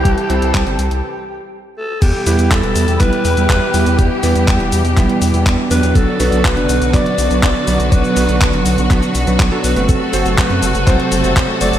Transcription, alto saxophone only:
X:1
M:4/4
L:1/8
Q:1/4=122
K:Em
V:1 name="Alto saxophone"
G6 z A | G2 A2 B2 B2 | G4 z3 B | A2 B2 d2 d2 |
B4 z3 B | A2 B2 c2 c d |]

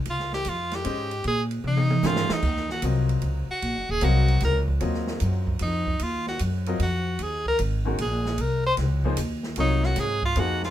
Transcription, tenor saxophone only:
X:1
M:3/4
L:1/8
Q:"Swing" 1/4=151
K:Bbdor
V:1 name="Tenor saxophone"
F G F G3 | A z E2 F E- | [K:Ebdor] E G z3 G- | G A G2 B z |
z4 E2 | F G z2 G2 | A B z2 A2 | B c z4 |
E G A F G F |]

